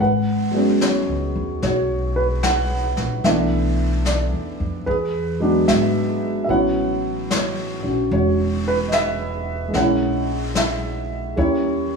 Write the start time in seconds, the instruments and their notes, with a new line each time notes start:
0.00 upright bass G#1, upright piano B4 F#5
0.51 upright piano F#3 G#3 B3
0.57 upright piano C#4
0.81 upright piano C#5, snare, hi-hat pedal
1.09 upright bass C#2
1.36 upright bass D#2
1.62 upright bass B1, upright piano F#4 C#5, brush sweep, snare
2.16 upright piano B4
2.43 upright piano F#5, snare, hi-hat pedal
2.97 upright bass A#1, snare
3.24 upright bass B1, upright piano E3 A3 B3 D4 A4 E5, brush sweep, snare
4.05 upright piano D5, snare, hi-hat pedal
4.33 upright bass E2
4.60 upright bass F2
4.86 upright bass E2, upright piano G#4 B4, brush sweep
5.40 upright piano F#3 G#3 B3 D4
5.68 upright bass G#1, upright piano E5, snare, hi-hat pedal
6.44 upright piano F#3 B3 E5
6.49 upright bass A1, upright piano C#4 E4 C#5 F#5, brush sweep
7.31 upright piano C#5, snare, hi-hat pedal
7.83 upright bass A#1, upright piano C#4 F#4
8.11 upright bass E1, upright piano C#5, brush sweep
8.15 upright piano F#4
8.68 upright piano B4
8.88 upright piano D#5, snare, hi-hat pedal
8.93 upright piano E5
9.68 upright piano G#3 A#3
9.73 upright bass A#1, upright piano C#4 C#5 F#5, brush sweep, snare
9.80 upright piano E4
10.55 upright piano E5, snare, hi-hat pedal
11.36 upright bass D#2, upright piano G3 A#3 C#4 E4 G4 C#5, brush sweep